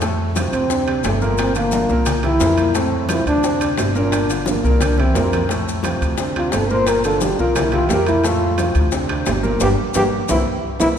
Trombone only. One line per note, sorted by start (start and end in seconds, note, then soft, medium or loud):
0.53 1.06 C4 medium
1.05 1.41 A3 medium
1.40 1.56 C4 loud
1.57 2.04 A#3 medium
2.26 2.79 E4 loud
2.78 3.12 C4 medium
3.11 3.27 E4 loud
3.27 3.75 D4 loud
3.97 4.51 D4 medium
4.49 4.85 A#3 medium
4.84 5.02 D4 medium
5.01 5.51 C4 medium
6.37 6.56 F4 medium
6.55 6.73 A4 medium
6.71 6.90 C5 loud
6.88 7.04 A#4 medium
7.05 7.25 A4 loud
7.23 7.39 G4 medium
7.40 7.60 F4 medium
7.58 7.74 E4 medium
7.74 7.92 F4 medium
7.91 8.07 G4 medium
8.08 8.28 E4 loud
8.26 8.76 F4 medium
9.62 9.70 G4 medium
9.96 10.04 G4 loud
10.30 10.38 E4 medium
10.80 10.89 E4 loud